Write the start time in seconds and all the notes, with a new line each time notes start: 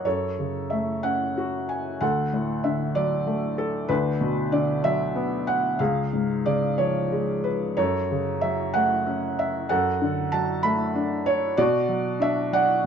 0.05 F#2 A4 C#5
0.39 C#3
0.70 A3 E5
1.03 C#4 F#5
1.38 F#4
1.69 G#5
2.01 D2 A4 F#5
2.33 A2
2.64 D3 E5
2.95 F#3 D5
3.27 A3
3.58 A4
3.88 D2 D4 B4
4.21 B2
4.52 D3 D5
4.84 F#3 E5
5.15 B3
5.47 F#5
5.79 C#2 G#4 F5
6.13 G#2
6.45 C#3 D5
6.78 F3 C#5
7.12 G#3
7.44 B4
7.77 F#2 A4 C#5
8.11 C#3
8.41 F#3 E5
8.74 A3 F#5
9.07 C#4
9.39 E5
9.69 F#2 A4 F#5
10.01 D3
10.32 F#3 A5
10.63 A3 B5
10.95 D4
11.26 C#5
11.57 B2 F#4 D5
11.89 F#3
12.20 D4 E5
12.52 F#3 D5 F#5